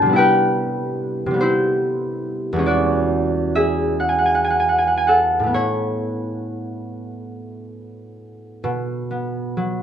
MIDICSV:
0, 0, Header, 1, 2, 480
1, 0, Start_track
1, 0, Tempo, 829876
1, 84, Time_signature, 6, 3, 24, 8
1, 1044, Tempo, 874636
1, 2004, Tempo, 943396
1, 2484, Tempo, 1056338
1, 3444, Tempo, 1018676
1, 4404, Tempo, 936037
1, 5008, End_track
2, 0, Start_track
2, 0, Title_t, "Harp"
2, 0, Program_c, 0, 46
2, 0, Note_on_c, 0, 45, 55
2, 0, Note_on_c, 0, 62, 45
2, 0, Note_on_c, 0, 64, 48
2, 0, Note_on_c, 0, 71, 67
2, 0, Note_on_c, 0, 72, 64
2, 0, Note_on_c, 0, 74, 66
2, 0, Note_on_c, 0, 76, 70
2, 0, Note_on_c, 0, 79, 80
2, 0, Note_on_c, 0, 81, 77
2, 0, Note_on_c, 0, 83, 93
2, 0, Note_on_c, 0, 84, 94
2, 11, Note_on_c, 0, 48, 56
2, 36, Note_on_c, 0, 55, 48
2, 53, Note_on_c, 0, 59, 42
2, 67, Note_off_c, 0, 45, 0
2, 67, Note_off_c, 0, 64, 0
2, 74, Note_on_c, 0, 64, 49
2, 87, Note_off_c, 0, 79, 0
2, 93, Note_on_c, 0, 79, 83
2, 95, Note_off_c, 0, 71, 0
2, 97, Note_off_c, 0, 62, 0
2, 102, Note_on_c, 0, 71, 70
2, 105, Note_off_c, 0, 81, 0
2, 108, Note_off_c, 0, 74, 0
2, 724, Note_off_c, 0, 48, 0
2, 731, Note_on_c, 0, 48, 55
2, 750, Note_off_c, 0, 55, 0
2, 757, Note_on_c, 0, 55, 46
2, 767, Note_off_c, 0, 59, 0
2, 774, Note_on_c, 0, 59, 43
2, 806, Note_off_c, 0, 72, 0
2, 813, Note_on_c, 0, 72, 77
2, 815, Note_off_c, 0, 64, 0
2, 822, Note_on_c, 0, 64, 53
2, 1348, Note_off_c, 0, 83, 0
2, 1440, Note_on_c, 0, 40, 50
2, 1460, Note_on_c, 0, 56, 47
2, 1473, Note_on_c, 0, 61, 46
2, 1498, Note_off_c, 0, 48, 0
2, 1511, Note_off_c, 0, 55, 0
2, 1514, Note_on_c, 0, 74, 69
2, 1520, Note_on_c, 0, 66, 60
2, 1537, Note_off_c, 0, 72, 0
2, 1539, Note_off_c, 0, 79, 0
2, 1540, Note_off_c, 0, 84, 0
2, 1587, Note_off_c, 0, 76, 0
2, 2004, Note_on_c, 0, 76, 77
2, 2008, Note_on_c, 0, 68, 54
2, 2230, Note_on_c, 0, 78, 56
2, 2270, Note_off_c, 0, 71, 0
2, 2275, Note_on_c, 0, 80, 56
2, 2306, Note_off_c, 0, 78, 0
2, 2325, Note_on_c, 0, 78, 59
2, 2351, Note_off_c, 0, 80, 0
2, 2361, Note_on_c, 0, 80, 59
2, 2398, Note_off_c, 0, 78, 0
2, 2408, Note_on_c, 0, 78, 60
2, 2439, Note_off_c, 0, 80, 0
2, 2457, Note_on_c, 0, 80, 59
2, 2481, Note_off_c, 0, 78, 0
2, 2487, Note_on_c, 0, 78, 58
2, 2524, Note_off_c, 0, 80, 0
2, 2530, Note_on_c, 0, 80, 61
2, 2561, Note_off_c, 0, 78, 0
2, 2570, Note_on_c, 0, 78, 59
2, 2603, Note_off_c, 0, 80, 0
2, 2614, Note_on_c, 0, 80, 61
2, 2644, Note_off_c, 0, 78, 0
2, 2654, Note_on_c, 0, 78, 54
2, 2687, Note_off_c, 0, 80, 0
2, 2701, Note_on_c, 0, 80, 59
2, 2729, Note_off_c, 0, 78, 0
2, 2744, Note_on_c, 0, 78, 72
2, 2751, Note_on_c, 0, 69, 56
2, 2774, Note_off_c, 0, 80, 0
2, 2820, Note_off_c, 0, 59, 0
2, 2858, Note_off_c, 0, 64, 0
2, 2891, Note_on_c, 0, 45, 44
2, 2910, Note_on_c, 0, 57, 37
2, 2923, Note_on_c, 0, 59, 38
2, 2947, Note_off_c, 0, 40, 0
2, 2955, Note_off_c, 0, 56, 0
2, 2958, Note_on_c, 0, 64, 44
2, 2959, Note_on_c, 0, 73, 65
2, 2978, Note_off_c, 0, 74, 0
2, 2978, Note_off_c, 0, 78, 0
2, 2980, Note_off_c, 0, 66, 0
2, 2980, Note_off_c, 0, 68, 0
2, 3388, Note_off_c, 0, 61, 0
2, 3842, Note_off_c, 0, 76, 0
2, 4386, Note_off_c, 0, 45, 0
2, 4396, Note_off_c, 0, 57, 0
2, 4399, Note_on_c, 0, 47, 61
2, 4423, Note_off_c, 0, 64, 0
2, 4426, Note_off_c, 0, 69, 0
2, 4633, Note_off_c, 0, 59, 0
2, 4639, Note_on_c, 0, 59, 46
2, 4812, Note_off_c, 0, 73, 0
2, 4877, Note_on_c, 0, 54, 44
2, 5008, Note_off_c, 0, 47, 0
2, 5008, Note_off_c, 0, 54, 0
2, 5008, Note_off_c, 0, 59, 0
2, 5008, End_track
0, 0, End_of_file